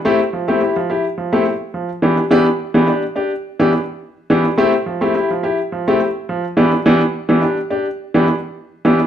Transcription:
X:1
M:4/4
L:1/16
Q:1/4=106
K:Flyd
V:1 name="Grand piano"
[A,CEG] z F, [A,CEG] [EG] F, [EG] z F, [A,CEG] [EG] z F, z [E,B,DG] [DG] | [E,B,DG] z2 [E,B,DG] [DG] z [DG] z2 [E,B,DG] [DG] z3 [E,B,DG] [DG] | [A,CEG] z F, [A,CEG] [EG] F, [EG] z F, [A,CEG] [EG] z F, z [E,B,DG] [DG] | [E,B,DG] z2 [E,B,DG] [DG] z [DG] z2 [E,B,DG] [DG] z3 [E,B,DG] [DG] |]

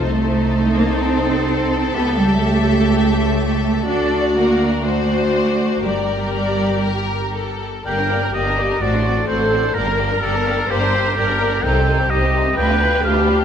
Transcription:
X:1
M:4/4
L:1/16
Q:1/4=126
K:Gm
V:1 name="Oboe"
z16 | z16 | z16 | z16 |
g4 e4 d4 c4 | B4 A4 G8 | g4 e4 g4 f4 |]
V:2 name="Violin section"
c16 | =e16 | d8 d8 | d4 d4 B4 A4 |
d B d B d B d B d c d c d c d c | d B d B d B d B d B d B d B d B | c G c G c G c G =B G B G B G B G |]
V:3 name="Viola section"
E16 | G16 | ^F8 F8 | G12- G2 z2 |
B4 G4 ^F4 A4 | B8 c4 B4 | A4 G4 =B4 G4 |]
V:4 name="Violin section"
A16- | A16 | A4 B4 c8 | B12- B2 z2 |
[B,G] [DB] [B,G] [DB] [B,G] [DB] [B,G] [DB] [C^F] [DA] [CF] [DA] [CF] [DA] [CF] [DA] | [B,G] [DB] [B,G] [DB] [B,G] [DB] [B,G] [DB] [B,G] [DB] [B,G] [DB] [B,G] [DB] [B,G] [DB] | E C E C E C E C [DF] [=B,D] [DF] [B,D] [DF] [B,D] [DF] [B,D] |]
V:5 name="Cello section" clef=bass
A,6 B,2 C8 | =B,2 G,2 A,12 | D4 B,4 A,8 | G,12 z4 |
G,,4 G,,4 A,,4 A,,4 | G,,4 G,,4 G,,4 G,,4 | C,,4 C,,4 D,,4 D,,4 |]
V:6 name="Double bass section" clef=bass
C,,16 | ^C,,16 | D,,16 | G,,,12- G,,,2 z2 |
G,,,4 G,,,4 A,,,4 A,,,4 | G,,,4 G,,,4 G,,,4 G,,,4 | C,,4 C,,4 D,,4 D,,4 |]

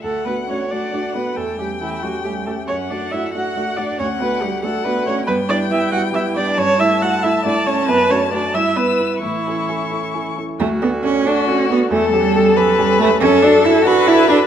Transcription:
X:1
M:6/8
L:1/8
Q:3/8=92
K:D
V:1 name="Violin"
f3 f3 | g6 | f3 f3 | f3 f3 |
g6 | a6- | a3 e'3 | c'4- c' z |
z3 F3 | A3 B3 | A3 B3 |]
V:2 name="Viola"
A B c d2 B | A G E F G A | c d e f2 d | c B G A B c |
B d e f e d | c e f e d c | B c d e B2 | E4- E z |
F3 F3 | A6 | A3 A3 |]
V:3 name="Grand piano"
D,, [A,DF] [A,DF] [A,DF] [A,DF] [A,DF] | E,, [A,CG] [A,CG] [A,CG] [A,CG] [A,CG] | F,, [A,DF] [A,DF] [A,DF] [A,DF] [A,DF] | D,, [A,DF] [A,DF] [A,DF] [A,DF] [A,DF] |
G,, [G,B,E] [G,B,E] [G,B,E] [G,B,E] [G,B,E] | G,, [A,E] [A,E] [A,E] [A,E] [A,E] | F,, [A,DF] [A,DF] G,, [B,EB] [B,EB] | A,, [CEA] [CEA] [CEA] [CEA] [CEA] |
D,, [DFA] [DFA] [DFA] [DFA] [DFA] | E,, [CGA] [CGA] [CGA] [CGA] [CGA] | F,, [DFA] [DFA] [DFA] [DFA] [DFA] |]
V:4 name="Cello"
A, B, C D2 B, | A, G, E, F, G, A, | C D E F2 D | C B, G, A, B, C |
B, D E F E D | C E F E D C | B, C D E B,2 | E,4- E, z |
A, B, C D C B, | A, G,2 F, G, A, | C D E F E D |]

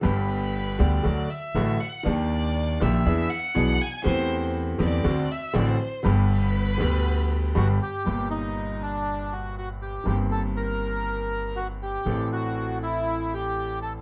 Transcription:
X:1
M:4/4
L:1/16
Q:1/4=120
K:G
V:1 name="Violin"
B6 d4 e4 f2 | d6 e4 f4 ^g2 | c4 z2 d4 e2 d c3 | B12- B2 z2 |
[K:Gm] z16 | z16 | z16 |]
V:2 name="Bandoneon"
z16 | z16 | z16 | z12 F2 G2- |
[K:Gm] G2 E4 D4 ^F2 F2 G2 | G2 A2 B8 ^F2 G2- | G2 ^F4 =E4 G4 A2 |]
V:3 name="Grand piano" clef=bass
[G,,,G,,D,G,B,G]6 [D,,D,G,B,G]2 [D,,D,F,A,F]2 z2 [A,,,A,,D,F,A,F]2 z2 | [_E,,_E,_B,DG]6 [_B,,,_B,,E,B,DG]2 [=E,,=E,=B,D^G]2 z2 [=B,,,=B,,E,B,DG]2 z2 | [E,,E,A,CG]6 [E,,E,A,CG]2 [D,,D,A,CF]2 z2 [A,,,A,,D,A,CF]2 z2 | [G,,,G,,D,G,B,G]6 [D,,D,G,B,G]6 [G,,,G,,D,G,B,G]2 z2 |
[K:Gm] [G,,,G,,B,,G,B,G]16 | [G,,,G,,E,B,CG]16 | [A,,,A,,=E,A,CA]16 |]
V:4 name="Upright bass" clef=bass
G,,,6 D,,2 D,,2 z2 A,,,2 z2 | _E,,6 _B,,,2 =E,,2 z2 =B,,,2 z2 | E,,6 E,,2 D,,2 z2 A,,,2 z2 | G,,,6 D,,6 G,,,2 z2 |
[K:Gm] G,,,16 | G,,,16 | A,,,16 |]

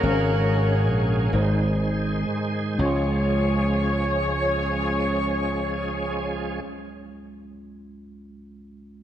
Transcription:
X:1
M:6/8
L:1/8
Q:3/8=38
K:Db
V:1 name="Saxophone section"
[DGB]4 z2 | d6- | d6 |]
V:2 name="Tine electric piano"
[A,,A,Dcdf]3 [A,,A,Ec]3 | [D,,A,DFc']6- | [D,,A,DFc']6 |]
V:3 name="Tonewheel organ"
[D,A,DA]3 [E,A,B,Ac]3 | [F,A,DA]6- | [F,A,DA]6 |]
V:4 name="Slap bass" clef=bass
A,,,2 B,,, A,,,2 z | D,,6- | D,,6 |]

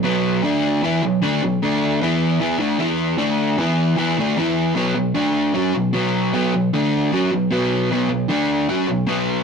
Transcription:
X:1
M:4/4
L:1/8
Q:1/4=153
K:D
V:1 name="Overdriven electric guitar" clef=bass
[B,,F,B,]2 [D,A,D]2 [E,B,E] [B,,F,] [D,A,D] [B,,F,] | [D,A,D]2 [E,B,E]2 [E,B,E] [D,A,D] [E,B,E]2 | [D,A,D]2 [E,B,E]2 [E,B,E] [D,A,D] [E,B,E]2 | [K:Bm] [B,,F,B,] [B,,F,] [D,A,D]2 [F,CF] [B,,F,] [B,,F,B,]2 |
[B,,F,B,] [B,,F,] [D,A,D]2 [F,CF] [B,,F,] [B,,F,B,]2 | [B,,F,B,] [B,,F,] [D,A,D]2 [F,CF] [B,,F,] [B,,F,B,]2 |]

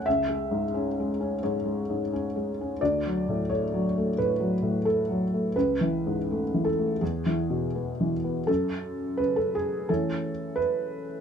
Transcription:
X:1
M:4/4
L:1/16
Q:1/4=87
K:F#m
V:1 name="Felt piano"
e8 c4 z4 | d4 c4 B4 A4 | B6 A2 G6 z2 | A4 B A G2 A4 B4 |]
V:2 name="Felt piano" clef=bass
(3C,,2 G,2 G,,2 (3C2 G,2 C2 (3G,,2 G,2 G,,2 (3C2 G,2 C2 | (3D,,2 F,2 A,,2 (3A,2 F,2 A,2 (3A,,2 F,2 A,,2 (3A,2 F,2 A,2 | (3C,,2 E,2 G,,2 (3A,2 E,2 A,2 (3E,,2 E,2 B,,2 (3B,2 E,2 B,2 | F,,4 C,4 [E,A,C]8 |]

